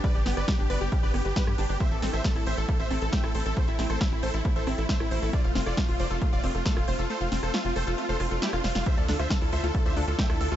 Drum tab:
HH |xxoxxxo-xxoxxxoo|xxoxxooxxxoxxxox|xxoxxxoxxxoxxxoo|xxoxxooxxxoxxxox|
SD |--oro-----r-or--|--oro-------or--|--oro-----r-or--|--oro-------or--|
BD |o---o---o---o---|o---o---o---o---|o---o---o---o---|o---o---o---o---|

HH |xxoxxxoxxxoxxxoo|xxoxxooxxxoxxxox|
SD |--oro-----r-oroo|--oro-------or--|
BD |----------------|o---o---o---o---|